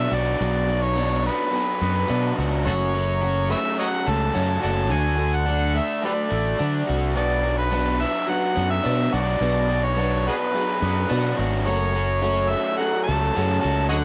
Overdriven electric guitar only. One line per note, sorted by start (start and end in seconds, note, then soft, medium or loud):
0.00 0.67 F#3 medium
0.00 0.97 B3 medium
0.00 0.97 D4 medium
0.11 2.38 F#4 medium
0.41 1.82 B2 medium
0.67 1.54 F#3 medium
0.98 2.09 D4 medium
1.26 1.81 B3 medium
1.54 2.94 F#3 medium
1.82 2.66 B3 medium
2.10 2.66 D4 medium
2.38 4.60 F#4 medium
2.66 4.07 F#2 medium
2.94 3.78 F#3 medium
3.21 4.33 C#4 medium
3.50 4.04 A3 medium
3.78 4.89 F#3 medium
4.05 4.90 A3 medium
4.34 4.91 C#4 medium
4.61 6.87 F#4 medium
4.89 5.17 D3 medium
5.18 6.01 D3 medium
5.46 6.58 D4 medium
5.74 6.29 A3 medium
6.02 7.16 D3 medium
6.30 7.15 A3 medium
6.59 7.71 D4 medium
6.87 9.12 F#4 medium
7.15 8.56 B2 medium
7.43 8.27 F#3 medium
7.72 8.82 D4 medium
7.99 8.54 B3 medium
8.27 9.69 F#3 medium
8.55 9.97 B3 medium
8.83 9.96 D4 medium
9.12 11.37 F#4 medium
9.41 10.82 B2 medium
9.69 10.54 F#3 medium
9.97 11.08 D4 medium
10.26 10.80 B3 medium
10.55 11.93 F#3 medium
10.82 11.66 B3 medium
11.09 11.66 D4 medium
11.37 13.61 F#4 medium
11.65 13.06 F#2 medium
11.94 12.78 F#3 medium
12.22 13.34 C#4 medium
12.51 13.05 A3 medium
12.79 13.90 F#3 medium
13.07 13.91 A3 medium
13.35 13.91 C#4 medium
13.61 13.90 F#4 medium
13.90 14.04 D3 medium